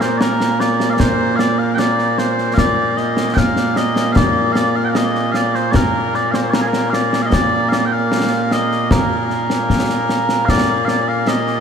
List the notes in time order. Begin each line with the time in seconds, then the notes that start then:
Already playing: A#2 A#3
0.01 C5, snare
0.18 A#4 D5, snare
0.41 snare
0.60 D5, snare
0.80 snare
0.90 D5 F5
1.00 C5, concert bass drum, snare
1.36 D5 F5, snare
1.59 F5
1.75 D5 G5
1.79 snare
1.99 snare
2.18 C5, snare
2.38 snare
2.54 F5, concert bass drum, snare
2.58 D5
2.97 D#5, snare
3.17 snare
3.34 F5 G5, concert bass drum, snare
3.56 snare
3.76 D#5, snare
3.96 snare
4.12 D5 F5, concert bass drum, snare
4.52 D5 F5, snare
4.76 F5
4.85 F5 G5
4.95 D#5, snare
5.15 snare
5.32 F5, snare
5.36 D5
5.55 C5, snare
5.71 D5, concert bass drum, snare
5.75 A#4
6.14 D5, snare
6.31 C5 F5, snare
6.51 A#4 D5, snare
6.61 G#4
6.68 A#4
6.73 snare
6.90 D5 F5, snare
7.13 snare
7.22 D#5 F5
7.32 D5, concert bass drum, snare
7.69 F5, snare
7.73 D5
7.86 G5
7.92 F5
8.12 snare
8.32 snare
8.51 D#5, snare
8.71 snare
8.91 A#4, concert bass drum, snare
9.30 snare
9.50 snare
9.70 concert bass drum, snare
9.89 snare
10.09 snare
10.29 snare
10.45 F5, concert bass drum, snare
10.49 D5
10.85 D5 F5, snare
11.08 F5
11.27 D#5, snare
11.47 snare